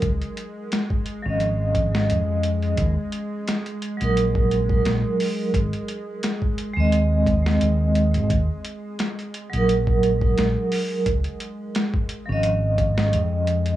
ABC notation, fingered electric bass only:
X:1
M:4/4
L:1/16
Q:"Swing 16ths" 1/4=87
K:Ebdor
V:1 name="Fingered electric bass" clef=bass
D,, z6 A,,,4- A,,, F,,4 | E,, z6 B,,,4- B,,, B,,, z3 | A,,, z6 E,,4- E,, E,,3 A,,, | E,, z6 B,,,4- B,,, B,,, z3 |
D,, z6 A,,,4- A,,, F,,4 |]